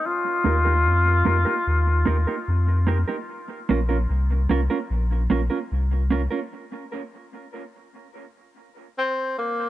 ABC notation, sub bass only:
X:1
M:4/4
L:1/16
Q:1/4=74
K:Bbdor
V:1 name="Sub bass" clef=bass
z2 E,,2 F,,2 F,, z E,,2 E,, z F,,3 z | z2 B,,,2 C,,2 C,, z B,,,2 B,,, z C,,3 z | z16 |]